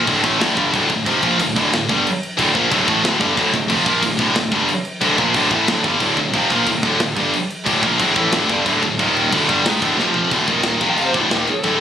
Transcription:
0.07 D1 D2 A2 D3, kick, crash
0.24 A1 A2 E3 A3, kick, crash
0.39 D1 D2 A2 D3, snare, crash
0.56 G1 G2 D3 G3, kick, crash
0.72 D1 D2 A2 D3, kick, crash
0.90 D1 D2 A2, kick, crash
1.06 F1 F2 C3 F3, kick, crash
1.23 A#1 A#2 F3 A#3, kick, crash
1.39 D1 D2 A2, kick, crash
1.56 D1 D2 A2 D3, kick, crash
1.73 D1 D2 A2, snare, crash
1.89 G1 G2 D3 G3, kick, crash
2.07 crash
2.23 crash
2.38 D1 D2 A2 D3, kick, crash
2.54 A#1 A#2 F3 A#3, kick, crash
2.70 D1 D2 A2 D3, kick, crash
2.86 A1 A2 E3 A3, kick, crash
3.02 D1 D2 A2 D3, snare, crash
3.18 G1 G2 D3 G3, kick, crash
3.34 D1 D2 A2 D3, kick
3.38 crash
3.53 D1 D2 A2, kick, crash
3.68 F1 F2 C3 F3, kick, crash
3.85 A#1 A#2 F3 A#3, kick, crash
4.02 D1 D2 A2, kick, crash
4.17 D1 D2 A2 D3, kick, crash
4.34 D1 D2 A2, snare, crash
4.51 G1 G2 D3 G3, kick, crash
4.69 crash
4.85 crash
5.01 D1 D2 A2 D3, kick, crash
5.18 A#1 A#2 F3 A#3, kick, crash
5.34 D1 D2 A2 D3, kick, crash
5.51 A1 A2 E3 A3, kick, crash
5.68 D1 D2 A2 D3, snare, crash
5.84 G1 G2 D3 G3, kick, crash
6.00 D1 D2 A2 D3, kick, crash
6.17 D1 D2 A2, kick, crash
6.33 F1 F2 C3 F3, kick, crash
6.50 A#1 A#2 F3 A#3, kick, crash
6.66 D1 D2 A2, kick, crash
6.83 D1 D2 A2 D3, kick, crash
7.00 D1 D2 A2, snare, crash
7.16 G1 G2 D3 G3, kick, crash
7.33 crash
7.50 crash
7.66 D1 D2 A2 D3, kick, crash
7.82 A#1 A#2 F3 A#3, kick, crash
7.99 D1 D2 A2 D3, kick, crash
8.16 A1 A2 E3 A3, kick, crash
8.32 D1 D2 A2 D3, snare, crash
8.49 G1 G2 D3 G3, kick, crash
8.66 D1 D2 A2 D3, kick, crash
8.82 D1 D2 A2, kick, crash
8.99 D#1 D#2 A#2 D#3, kick, crash
9.17 crash
9.32 D1 D2 A2 D3, kick, crash
9.49 G1 G2 D3 G3, kick, crash
9.64 G#1 G#2 D#3 G#3, snare, crash
9.82 D1 D2 A2 D3, kick, crash
9.97 F1 F2 C3 F3, snare
10.14 floor tom
10.31 D1 D2 A2 D3, kick, crash
10.48 D#1 D#2 A#2 D#3, kick, crash
10.63 snare, crash
10.80 F1 F2 C3 F3, kick, crash
10.90 G5
10.97 F5, crash
11.05 C5
11.13 D1 D2 A2 D3 G4, kick, crash
11.21 E4
11.30 D#1 D#2 A#2 D#3 F4, snare, crash
11.35 G4
11.43 A#4
11.47 G#4, crash
11.60 A4, crash
11.64 D1 D2 A2 D3, kick

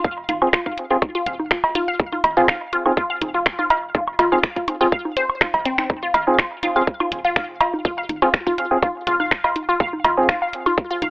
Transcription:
0.04 F1 F5, kick
0.29 G#1 F4, closed hi-hat, high conga
0.42 C4 F4 G#4, high woodblock
0.53 F4, finger snap, kick
0.66 F5, kick, high conga
0.78 closed hi-hat
0.90 C4 F4 G#4
1.02 kick, high conga, high woodblock
1.15 F4
1.26 D#1 F5, closed hi-hat
1.39 F1, high conga
1.51 F4, finger snap, kick
1.64 cowbell, high woodblock
1.75 F4, closed hi-hat, high conga
1.88 F5
2.00 F1, kick
2.12 F4, high conga
2.24 G#1, closed hi-hat, cowbell, high woodblock
2.37 C4 F4 G#4
2.48 F5, finger snap, kick, high conga
2.73 F4, closed hi-hat
2.85 C4 F4 G#4, high conga, high woodblock
2.97 F4, kick
3.10 F5
3.21 D#1, closed hi-hat, high conga
3.34 F1 F4
3.46 finger snap, kick, high woodblock
3.59 F4, high conga
3.70 F5, closed hi-hat, cowbell
3.95 F1 F4, kick, high conga
4.08 high woodblock
4.19 G#1 F4, closed hi-hat, cowbell
4.32 C4 F4 G#4 F5, high conga
4.43 finger snap, kick
4.56 F4, kick, closed hi-hat
4.68 closed hi-hat, high conga, high woodblock
4.81 C4 F4 G#4
4.92 F5, kick
5.05 high conga
5.17 C5, closed hi-hat
5.30 high woodblock
5.41 F4, finger snap, kick, high conga
5.54 F1, closed hi-hat, cowbell
5.65 C4, closed hi-hat
5.78 C4, finger snap, high conga
5.90 F1, kick, high conga
6.03 F4
6.14 G#1 F5, closed hi-hat, cowbell
6.27 C4 F4 G#4, high conga
6.39 F4, finger snap, kick, high woodblock
6.63 F4, closed hi-hat, high conga
6.76 C4 F4 G#4 F5
6.87 kick
7.00 F4, high conga, high woodblock
7.12 D#1, closed hi-hat
7.25 F1 F4
7.36 F5, finger snap, kick, high conga
7.60 F4, closed hi-hat, cowbell, high woodblock
7.73 high conga
7.85 F1 F4, kick
7.98 F5
8.09 G#1, closed hi-hat, high conga
8.22 C4 F4 G#4, high woodblock
8.34 finger snap, kick
8.47 F4, kick, high conga
8.58 F5, closed hi-hat
8.71 C4 F4 G#4
8.82 F4, kick, high conga, high woodblock
9.07 D#1 F4, closed hi-hat
9.20 F1 F5, high conga
9.31 finger snap, kick
9.44 F4, cowbell, high woodblock
9.56 closed hi-hat, high conga
9.69 F4
9.80 F1 F5, kick
9.93 high conga
10.04 G#1 F4, closed hi-hat, cowbell, high woodblock
10.17 C4 F4 G#4
10.29 F4, finger snap, kick, high conga
10.42 F5
10.53 closed hi-hat
10.66 F4, high conga, high woodblock
10.78 kick
10.90 F4
11.02 D#1 F5, closed hi-hat, high conga

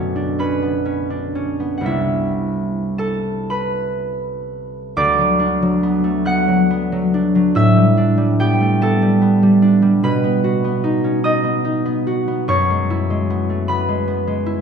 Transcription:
Already playing: B1 F#2 D3 F#3 A3 B3 C#4 D4 F#4 A4 B4 D5 F#5 A5 B5 D6
0.16 D4
0.39 C#4 B4 B5
0.62 B3
0.85 C#4
1.10 D4
1.35 C#4
1.60 B3
1.78 C2 F#5
1.83 C3 A#3 D4 E5
1.87 E4
2.98 A4 A5
3.50 B4 B5
4.97 D2 D5 D6
5.19 F#3
5.40 D4
5.62 F#3
5.83 B3
6.04 A3
6.25 B3 F#5 F#6
6.48 F#3
6.71 B3
6.92 F#3
7.14 D4
7.35 F#3
7.55 A2 E5 E6
7.77 G3
7.97 D4
8.18 G3
8.40 B3 G4 G5
8.61 A3
8.81 B3 A4 A5
9.02 G3
9.22 B3
9.43 G3
9.62 D4
9.82 G3
10.03 B2 B4 B5
10.24 B3
10.44 F#4
10.64 B3
10.84 D#4
11.04 C#4
11.24 D#4 D#5 D#6
11.44 B3
11.65 D#4
11.85 B3
12.07 F#4
12.28 B3
12.48 F#2 C#5 C#6
12.70 G#3
12.90 E4
13.10 G#3
13.30 B3
13.50 A3
13.68 B3 B4 B5
13.89 G#3
14.08 B3
14.27 G#3
14.46 E4

